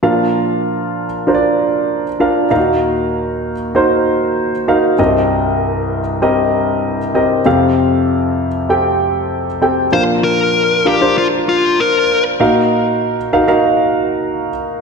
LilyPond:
<<
  \new Staff \with { instrumentName = "Lead electric guitar" } { \time 4/4 \key bes \major \tempo 4 = 97 r1 | r1 | r1 | r1 |
c''8 bes'4 g'8 f'8 f'8 bes'8. r16 | r1 | }
  \new Staff \with { instrumentName = "Grand piano" } { \time 4/4 \key bes \major <d' f' bes' f''>4.~ <d' f' bes' f''>16 r16 <d' f' bes' c'' d''>4~ <d' f' bes' c'' d''>16 r16 <d' f' bes' f''>8 | <ees' f' ges' bes' f''>4.~ <ees' f' ges' bes' f''>16 r16 <ees' ges' bes' c''>4~ <ees' ges' bes' c''>16 r16 <ees' ges' bes' f''>8 | <c' g' bes' ees''>4.~ <c' g' bes' ees''>16 r16 <c' g' bes' ees''>4~ <c' g' bes' ees''>16 r16 <c' g' bes' ees''>8 | <c' g' a' f''>4.~ <c' g' a' f''>16 r16 <c' g' a' g''>4~ <c' g' a' g''>16 r16 <c' g' a' g''>8 |
<d' f' bes' f''>4~ <d' f' bes' f''>16 r16 <d' f' bes' f''>16 <d' f' bes' c''>4.~ <d' f' bes' c''>16 r8 | <ees' ges' bes' f''>4~ <ees' ges' bes' f''>16 r16 <ees' ges' bes' f''>16 <ees' ges' bes' f''>4.~ <ees' ges' bes' f''>16 r8 | }
  \new Staff \with { instrumentName = "Grand piano" } { \clef bass \time 4/4 \key bes \major <bes, f>1 | <ees, bes,>1 | <c, g,>1 | <f, c>1 |
<bes, f>4. r2 r8 | bes,4. r2 r8 | }
>>